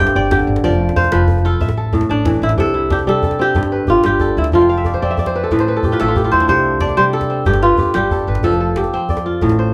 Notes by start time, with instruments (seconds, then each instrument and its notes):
Already playing: kora C4 G4 C5 D5
0.00 kora G2 G5
0.07 djembe slap, djembe tone
0.15 upright bass G1, kora D5 G5
0.31 kora D3 G4, djembe slap, djembe bass
0.39 djembe tone
0.47 upright bass G1
0.56 djembe slap
0.64 upright bass F1, kora F3 D5, djembe bass
0.73 djembe slap, djembe tone
0.89 djembe slap
0.96 upright bass F1, kora C5 F5, djembe bass
1.04 djembe slap, djembe tone
1.12 upright bass F1, kora F3 B4, djembe slap
1.28 djembe bass
1.36 djembe tone
1.45 kora F4 A4
1.52 djembe slap
1.60 upright bass A1, kora E5, djembe bass
1.69 djembe slap, djembe tone
1.77 kora A4
1.85 djembe slap
1.93 kora A2, djembe bass
2.01 djembe slap, djembe tone
2.09 upright bass A1, kora D4 A5
2.25 kora E3, djembe slap, djembe bass
2.33 djembe tone
2.42 upright bass A1, kora E4
2.49 djembe slap
2.58 upright bass C2, kora C3 A4, djembe slap, djembe bass
2.66 djembe tone
2.74 kora E4
2.90 kora D4 G4, djembe slap, djembe bass
2.99 djembe tone
3.07 upright bass C3, kora G3 A4
3.23 kora A4, djembe bass
3.31 djembe slap, djembe tone
3.39 kora C4 G4, djembe slap
3.55 upright bass G1, kora G2, djembe bass
3.63 djembe slap, djembe tone
3.72 kora B4
3.87 upright bass G1, kora F4 G4, djembe bass
4.04 upright bass G1, kora G3 G4, djembe slap
4.20 kora A4, djembe bass
4.28 djembe tone
4.37 upright bass D2, kora E4
4.44 djembe slap
4.52 upright bass F1, kora F3 F4, djembe slap, djembe bass
4.60 kora G5, djembe tone
4.69 kora F5
4.77 kora E5
4.84 kora D5, djembe bass
4.93 kora C5, djembe tone
5.02 upright bass F2, kora C4 D5
5.11 kora E5
5.17 kora D5, djembe bass
5.26 kora C5, djembe slap, djembe tone
5.34 kora B4, djembe slap
5.44 kora A4
5.51 upright bass A1, kora A2 B4, djembe bass
5.59 kora C5, djembe slap
5.67 kora B4, djembe slap
5.76 kora A4
5.83 upright bass A1, kora G4, djembe bass
5.91 kora F4 B4, djembe tone
6.00 upright bass A1, kora A3 E4 A4, djembe slap
6.08 kora F4
6.16 kora G4, djembe bass
6.24 kora F4, djembe tone
6.32 upright bass E2, kora E4 C5
6.40 kora D4, djembe slap
6.48 upright bass C2, kora C3 C5, djembe slap, djembe bass
6.56 djembe tone
6.81 kora D4 D5, djembe slap, djembe bass
6.89 djembe tone
6.97 upright bass C3, kora G3 C5
7.13 kora A4
7.21 djembe slap, djembe tone
7.29 kora C4, djembe slap
7.45 upright bass G1, kora G2 G4, djembe bass
7.54 djembe slap, djembe tone
7.63 kora F4 B4
7.77 upright bass G1, kora G4, djembe bass
7.85 djembe tone
7.94 upright bass G1, kora G3 G4, djembe slap
8.11 kora A4, djembe bass
8.19 djembe tone
8.27 upright bass G1, kora B4
8.35 djembe slap
8.43 upright bass F1, kora F3 A4, djembe bass
8.51 djembe tone
8.60 kora A4
8.76 kora G4, djembe slap
8.84 djembe tone
8.93 upright bass F2, kora C4
9.00 djembe slap
9.09 kora D5, djembe bass
9.17 djembe slap, djembe tone
9.26 kora F4
9.33 djembe slap
9.41 upright bass A1, kora A2, djembe slap, djembe bass
9.49 djembe slap, djembe tone
9.58 kora C5, djembe slap